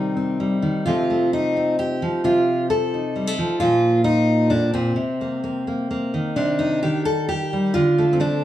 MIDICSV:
0, 0, Header, 1, 2, 480
1, 0, Start_track
1, 0, Tempo, 467654
1, 877, Time_signature, 3, 2, 24, 8
1, 1830, Tempo, 457317
1, 8818, End_track
2, 0, Start_track
2, 0, Title_t, "Steel-string acoustic guitar"
2, 0, Program_c, 0, 25
2, 0, Note_on_c, 0, 48, 68
2, 0, Note_on_c, 0, 51, 58
2, 0, Note_on_c, 0, 55, 38
2, 0, Note_on_c, 0, 60, 39
2, 0, Note_on_c, 0, 63, 74
2, 166, Note_off_c, 0, 60, 0
2, 170, Note_on_c, 0, 60, 36
2, 395, Note_off_c, 0, 55, 0
2, 410, Note_on_c, 0, 55, 40
2, 628, Note_off_c, 0, 51, 0
2, 637, Note_off_c, 0, 48, 0
2, 640, Note_on_c, 0, 51, 55
2, 874, Note_off_c, 0, 63, 0
2, 878, Note_on_c, 0, 65, 83
2, 879, Note_off_c, 0, 51, 0
2, 886, Note_off_c, 0, 55, 0
2, 889, Note_on_c, 0, 48, 63
2, 897, Note_on_c, 0, 53, 45
2, 903, Note_on_c, 0, 57, 41
2, 904, Note_off_c, 0, 60, 0
2, 908, Note_on_c, 0, 60, 40
2, 1126, Note_off_c, 0, 57, 0
2, 1131, Note_on_c, 0, 57, 40
2, 1357, Note_off_c, 0, 65, 0
2, 1367, Note_on_c, 0, 63, 77
2, 1605, Note_off_c, 0, 60, 0
2, 1610, Note_on_c, 0, 60, 37
2, 1831, Note_off_c, 0, 63, 0
2, 1835, Note_on_c, 0, 67, 86
2, 2076, Note_off_c, 0, 48, 0
2, 2076, Note_off_c, 0, 53, 0
2, 2080, Note_on_c, 0, 53, 57
2, 2287, Note_off_c, 0, 57, 0
2, 2288, Note_off_c, 0, 60, 0
2, 2311, Note_on_c, 0, 48, 68
2, 2312, Note_off_c, 0, 67, 0
2, 2316, Note_on_c, 0, 65, 81
2, 2788, Note_off_c, 0, 65, 0
2, 2792, Note_on_c, 0, 69, 84
2, 3044, Note_on_c, 0, 63, 37
2, 3075, Note_off_c, 0, 53, 0
2, 3271, Note_on_c, 0, 55, 44
2, 3394, Note_off_c, 0, 55, 0
2, 3394, Note_on_c, 0, 57, 38
2, 3505, Note_off_c, 0, 48, 0
2, 3510, Note_on_c, 0, 53, 56
2, 3714, Note_off_c, 0, 53, 0
2, 3718, Note_off_c, 0, 63, 0
2, 3732, Note_off_c, 0, 69, 0
2, 3736, Note_on_c, 0, 65, 100
2, 3743, Note_off_c, 0, 57, 0
2, 3745, Note_on_c, 0, 46, 67
2, 3752, Note_on_c, 0, 53, 45
2, 3757, Note_on_c, 0, 58, 44
2, 4197, Note_off_c, 0, 65, 0
2, 4201, Note_on_c, 0, 63, 90
2, 4681, Note_on_c, 0, 62, 90
2, 4682, Note_off_c, 0, 63, 0
2, 4692, Note_on_c, 0, 45, 55
2, 4924, Note_off_c, 0, 46, 0
2, 4924, Note_off_c, 0, 62, 0
2, 4929, Note_off_c, 0, 45, 0
2, 4929, Note_on_c, 0, 60, 73
2, 4937, Note_on_c, 0, 46, 63
2, 5145, Note_off_c, 0, 53, 0
2, 5147, Note_off_c, 0, 58, 0
2, 5160, Note_off_c, 0, 46, 0
2, 5164, Note_on_c, 0, 48, 65
2, 5427, Note_on_c, 0, 58, 39
2, 5652, Note_off_c, 0, 58, 0
2, 5664, Note_on_c, 0, 58, 41
2, 5900, Note_off_c, 0, 58, 0
2, 5912, Note_on_c, 0, 58, 36
2, 6145, Note_off_c, 0, 58, 0
2, 6157, Note_on_c, 0, 58, 44
2, 6388, Note_off_c, 0, 48, 0
2, 6401, Note_on_c, 0, 51, 58
2, 6612, Note_off_c, 0, 58, 0
2, 6631, Note_off_c, 0, 60, 0
2, 6635, Note_on_c, 0, 62, 86
2, 6642, Note_on_c, 0, 48, 69
2, 6873, Note_on_c, 0, 63, 77
2, 7117, Note_off_c, 0, 51, 0
2, 7118, Note_off_c, 0, 63, 0
2, 7123, Note_on_c, 0, 67, 88
2, 7124, Note_off_c, 0, 48, 0
2, 7129, Note_on_c, 0, 51, 55
2, 7357, Note_off_c, 0, 67, 0
2, 7361, Note_on_c, 0, 69, 98
2, 7363, Note_off_c, 0, 62, 0
2, 7602, Note_off_c, 0, 69, 0
2, 7606, Note_on_c, 0, 67, 96
2, 7861, Note_on_c, 0, 55, 45
2, 8080, Note_on_c, 0, 65, 99
2, 8083, Note_off_c, 0, 67, 0
2, 8086, Note_off_c, 0, 51, 0
2, 8090, Note_off_c, 0, 55, 0
2, 8093, Note_on_c, 0, 50, 69
2, 8339, Note_on_c, 0, 57, 50
2, 8490, Note_on_c, 0, 60, 55
2, 8552, Note_off_c, 0, 57, 0
2, 8554, Note_off_c, 0, 65, 0
2, 8564, Note_on_c, 0, 57, 70
2, 8571, Note_on_c, 0, 62, 82
2, 8818, Note_off_c, 0, 50, 0
2, 8818, Note_off_c, 0, 57, 0
2, 8818, Note_off_c, 0, 60, 0
2, 8818, Note_off_c, 0, 62, 0
2, 8818, End_track
0, 0, End_of_file